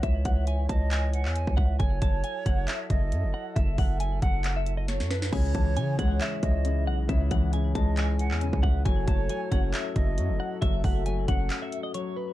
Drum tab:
CC |----------------|----------------|----------------|x---------------|
HH |x-x-x-x-x-x-x---|x-x-x-x-x-x-x---|x-o-x-x-x-x-x---|--x-x-x-x-x-x---|
CP |--------x--x----|--------x-------|--------x-------|--------x-------|
SD |----------------|----------------|------------oooo|----------------|
BD |o-o---o------oo-|o-o---o---o-----|o-o---o---------|o-o---o---o-----|

CC |----------------|----------------|----------------|
HH |x-x-x-x-x-x-x---|x-x-x-x-x-x-x---|x-o-x-x-x-x-x---|
CP |--------x--x----|--------x-------|--------x-------|
SD |----------------|----------------|----------------|
BD |o-o---o------oo-|o-o---o---o-----|o-o---o---------|